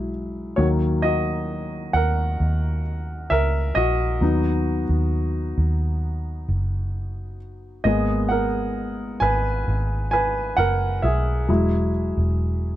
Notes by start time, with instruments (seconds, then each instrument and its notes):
Already playing: fingered electric bass B1, grand piano F#3 G#3 E4
0.56 fingered electric bass D#2, grand piano D#3 F#3 A#3 F#4 C#5
1.02 grand piano F#4 D#5
1.93 fingered electric bass D#2, grand piano A#4 F#5
2.40 fingered electric bass D#2
3.30 fingered electric bass C#2, grand piano A#4 E5
3.75 fingered electric bass A#1, grand piano F#4 D#5
4.21 fingered electric bass D#2, grand piano F#3 B3 D#4
4.89 fingered electric bass D#2
5.58 fingered electric bass D#2
6.48 fingered electric bass F#1
7.84 fingered electric bass G#1, grand piano G#3 A#3 B3 G#4 D#5
8.29 grand piano A#4 F#5
9.20 fingered electric bass G#1, grand piano B4 G#5
9.68 fingered electric bass G#1
10.11 grand piano B4 G#5
10.57 fingered electric bass F#1, grand piano A#4 F#5
11.02 fingered electric bass B1, grand piano G#4 E5
11.48 fingered electric bass E1, grand piano F#3 G#3 E4
12.17 fingered electric bass E1